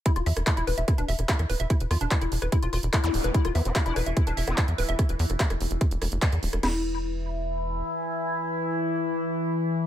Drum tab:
CC |----------------|----------------|----------------|----------------|
HH |xxoxxxoxxxoxxxox|xxoxxxoxxxoxxxox|xxoxxxoxxxoxxxox|xxoxxxoxxxoxxxox|
CP |----x-------x---|----x-------x---|----x-------x---|----x-------x---|
SD |-r-r--r-r--r-r--|r-r--r-r--r-r--r|-r--r-r--r-r--r-|r--r-r--r-r--r-r|
BD |o---o---o---o---|o---o---o---o---|o---o---o---o---|o---o---o---o---|

CC |x---------------|----------------|
HH |----------------|----------------|
CP |----------------|----------------|
SD |o---------------|----------------|
BD |----------------|----------------|